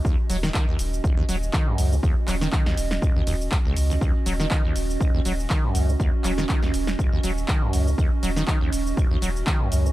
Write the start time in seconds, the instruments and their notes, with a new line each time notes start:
Already playing: ambient pad C#4 F#4 D#5
0.05 acid bass D#2, kick, shaker
0.30 sub bass D#1, acid bass F#3, open hi-hat, shaker
0.43 acid bass D#3, snare, shaker
0.54 acid bass D#3, kick, clap, shaker
0.68 acid bass D#2
0.79 sub bass D#1, open hi-hat, shaker
0.94 shaker
1.04 acid bass D#1, kick, shaker
1.17 acid bass D#2
1.29 sub bass D#1, acid bass F#3, open hi-hat, shaker
1.43 shaker
1.53 acid bass D#3, kick, snare, clap, shaker
1.67 acid bass F#2
1.78 sub bass C#2, open hi-hat, shaker
1.92 acid bass A#2, shaker
2.03 acid bass D#2, kick, shaker
2.28 sub bass D#1, acid bass F#3, clap, open hi-hat, shaker
2.41 acid bass D#3, snare, shaker
2.52 acid bass D#3, kick, clap, shaker
2.66 acid bass D#2, snare
2.77 sub bass D#1, open hi-hat, shaker
2.91 snare, shaker
3.02 acid bass D#1, kick, shaker
3.16 acid bass D#2
3.27 sub bass D#1, acid bass D#2, open hi-hat, shaker
3.41 shaker
3.52 acid bass F2, kick, clap, shaker
3.65 acid bass C#2
3.77 sub bass C#2, open hi-hat, shaker
3.90 acid bass D#2, shaker
4.01 acid bass D#2, kick, shaker
4.26 sub bass D#1, acid bass F#3, open hi-hat, shaker
4.40 acid bass D#3, snare, shaker
4.51 acid bass D#3, kick, clap, shaker
4.65 acid bass D#2
4.76 sub bass D#1, open hi-hat, shaker
4.90 shaker
5.01 acid bass D#1, kick, shaker
5.14 acid bass D#2
5.25 sub bass D#1, acid bass F#3, open hi-hat, shaker
5.40 shaker
5.50 acid bass D#3, kick, snare, clap, shaker
5.64 acid bass F#2
5.75 sub bass C#2, open hi-hat, shaker
5.89 acid bass A#2, shaker
6.00 acid bass D#2, kick, shaker
6.24 sub bass D#1, acid bass F#3, clap, open hi-hat, shaker
6.38 acid bass D#3, snare, shaker
6.49 acid bass D#3, kick, clap, shaker
6.63 acid bass D#2, snare
6.74 sub bass D#1, open hi-hat, shaker
6.87 snare, shaker
6.99 acid bass D#1, kick, shaker
7.12 acid bass D#2
7.23 sub bass D#1, acid bass F#3, open hi-hat, shaker
7.38 shaker
7.48 acid bass D#3, kick, clap, shaker
7.62 acid bass F#2
7.73 sub bass C#2, open hi-hat, shaker
7.87 acid bass A#2, shaker
7.98 acid bass D#2, kick, shaker
8.23 sub bass D#1, acid bass F#3, open hi-hat, shaker
8.36 acid bass D#3, snare, shaker
8.48 acid bass D#3, kick, clap, shaker
8.61 acid bass D#2
8.73 sub bass D#1, open hi-hat, shaker
8.87 shaker
8.97 acid bass D#1, kick, shaker
9.11 acid bass D#2
9.22 sub bass D#1, acid bass F#3, open hi-hat, shaker
9.36 shaker
9.47 acid bass D#3, kick, snare, clap, shaker
9.60 acid bass F#2
9.72 sub bass C#2, open hi-hat, shaker
9.85 acid bass A#2, shaker